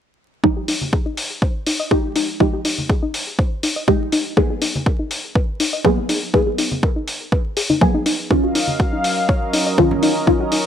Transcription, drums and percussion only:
0.44 kick loud
0.68 open hi-hat medium
0.81 high conga soft
0.93 kick loud
1.17 open hi-hat medium
1.42 kick loud
1.67 open hi-hat loud
1.91 kick loud
2.16 open hi-hat medium
2.40 kick loud
2.65 open hi-hat loud
2.78 high conga medium
2.89 kick loud
3.14 open hi-hat medium
3.39 kick loud
3.63 open hi-hat loud
3.88 kick loud
4.12 open hi-hat medium
4.37 kick loud
4.62 open hi-hat loud
4.76 high conga medium
4.86 kick loud
5.11 open hi-hat medium
5.35 kick loud
5.60 open hi-hat loud
5.85 kick loud
6.09 open hi-hat medium
6.34 kick loud
6.58 open hi-hat loud
6.72 high conga medium
6.83 kick loud
7.08 open hi-hat medium
7.32 kick loud
7.57 open hi-hat loud
7.70 high conga medium
7.81 kick loud
8.06 open hi-hat medium
8.31 kick loud
8.55 open hi-hat loud
8.68 high conga medium
8.80 kick loud
9.04 open hi-hat medium
9.29 kick loud
9.53 open hi-hat loud
9.78 kick loud
9.91 low conga medium
10.03 open hi-hat medium
10.27 kick loud
10.52 open hi-hat loud

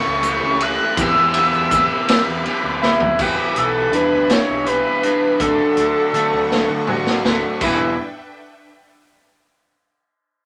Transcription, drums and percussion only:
0.23 ride medium
0.23 shaker loud
0.60 ride medium
0.60 shaker soft
0.97 kick medium
0.97 ride medium
0.97 shaker medium
1.34 ride medium
1.34 shaker soft
1.54 shaker soft
1.71 kick medium
1.71 ride medium
1.71 shaker loud
2.08 snare loud
2.08 ride loud
2.45 ride medium
2.83 snare medium
3.00 floor tom medium
3.19 kick medium
3.19 crash medium
3.56 closed hi-hat medium
3.93 closed hi-hat medium
4.29 snare loud
4.29 closed hi-hat medium
4.66 closed hi-hat medium
5.03 closed hi-hat medium
5.40 kick medium
5.40 closed hi-hat medium
5.77 closed hi-hat medium
6.14 closed hi-hat medium
6.51 snare medium
6.87 mid tom medium
7.06 snare medium
7.25 snare medium
7.61 kick medium
7.61 crash medium

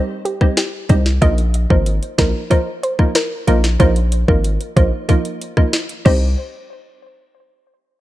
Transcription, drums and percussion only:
0.26 closed hi-hat medium
0.41 kick medium
0.41 cross-stick medium
0.57 snare loud
0.57 closed hi-hat medium
0.89 kick medium
0.89 closed hi-hat medium
1.06 snare medium
1.22 kick loud
1.22 closed hi-hat medium
1.38 closed hi-hat medium
1.54 closed hi-hat medium
1.70 kick loud
1.86 closed hi-hat medium
2.03 closed hi-hat soft
2.19 kick loud
2.19 snare loud
2.19 closed hi-hat medium
2.51 kick medium
2.51 closed hi-hat medium
2.83 closed hi-hat medium
2.99 kick medium
2.99 cross-stick medium
3.15 snare loud
3.15 closed hi-hat medium
3.48 closed hi-hat medium
3.64 snare medium
3.80 kick loud
3.80 closed hi-hat medium
3.96 closed hi-hat medium
4.12 closed hi-hat medium
4.28 kick loud
4.44 closed hi-hat medium
4.61 closed hi-hat soft
4.77 kick loud
4.77 closed hi-hat medium
5.09 kick medium
5.09 closed hi-hat medium
5.25 closed hi-hat medium
5.41 closed hi-hat medium
5.57 kick medium
5.57 cross-stick medium
5.73 snare loud
5.73 closed hi-hat medium
5.89 closed hi-hat medium
6.06 kick loud
6.06 crash medium

